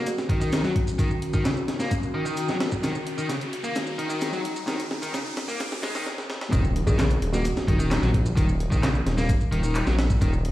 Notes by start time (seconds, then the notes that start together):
Already playing: D#3 C#4 F#4, riser
0.06 F#4, closed hi-hat, shaker
0.18 snare, shaker
0.29 D#3, kick, closed hi-hat
0.41 D#3, closed hi-hat, shaker
0.52 snare, closed hi-hat, shaker
0.64 F#3, snare, shaker
0.76 kick, closed hi-hat
0.87 shaker
0.99 D#3, kick, closed hi-hat, shaker
1.11 shaker
1.22 closed hi-hat
1.33 D#3, kick, shaker
1.44 C#3, snare, closed hi-hat, shaker
1.57 shaker
1.68 snare, closed hi-hat
1.80 A#3, snare, shaker
1.91 kick, closed hi-hat, shaker
2.03 shaker
2.14 D#3
2.26 D#3, shaker
2.37 closed hi-hat, shaker
2.49 F#3, snare, shaker
2.60 snare, closed hi-hat
2.72 kick, shaker
2.83 D#3 D#4, snare, closed hi-hat, shaker
2.95 shaker
3.07 closed hi-hat
3.18 D#3, shaker
3.29 C#3, snare, closed hi-hat, shaker
3.41 closed hi-hat, shaker
3.53 closed hi-hat
3.64 A#3, shaker
3.75 snare, closed hi-hat, shaker
3.87 shaker
3.98 D#3, closed hi-hat
4.10 D#3, closed hi-hat, shaker
4.21 snare, closed hi-hat, shaker
4.33 F#3, shaker
4.45 closed hi-hat
4.56 shaker
4.67 D#3, snare, closed hi-hat, shaker
4.79 closed hi-hat, shaker
4.91 snare
5.02 D#3, closed hi-hat, shaker
5.13 C#3, snare, closed hi-hat, shaker
5.26 shaker
5.37 snare, closed hi-hat
5.48 A#3, shaker
5.60 snare, closed hi-hat, shaker
5.72 snare, shaker
5.83 G#3, snare, closed hi-hat
5.95 D#3, snare, shaker
6.06 snare
6.18 snare
6.30 snare
6.41 snare
6.52 D#1 D#3, kick, closed hi-hat, impact, shaker
6.64 shaker
6.76 closed hi-hat
6.87 A#1 D#3 G#4, kick, shaker
6.98 C#3, snare, clap, closed hi-hat, shaker
7.10 closed hi-hat, shaker
7.22 D#1, closed hi-hat
7.33 A#3 F#4, snare, shaker
7.44 F#4, closed hi-hat, shaker
7.57 snare, shaker
7.68 D#1 D#3, kick, closed hi-hat
7.79 D#3, closed hi-hat, shaker
7.91 snare, clap, closed hi-hat, shaker
8.02 A#1 F#3, snare, shaker
8.14 kick, closed hi-hat
8.26 shaker
8.36 D#1 D#3, kick, closed hi-hat, shaker
8.49 shaker
8.60 closed hi-hat
8.71 A#1 D#3, kick, shaker
8.82 C#3, snare, clap, closed hi-hat, shaker
8.95 shaker
9.06 D#1, snare, closed hi-hat
9.17 A#3, snare, shaker
9.29 kick, closed hi-hat, shaker
9.41 shaker
9.52 D#1 D#3, closed hi-hat
9.63 D#3, shaker
9.75 clap, closed hi-hat, shaker
9.87 A#1 F#3, snare, shaker
9.99 snare, closed hi-hat
10.10 kick, shaker
10.21 D#1 D#3, kick, closed hi-hat, shaker
10.33 shaker
10.45 closed hi-hat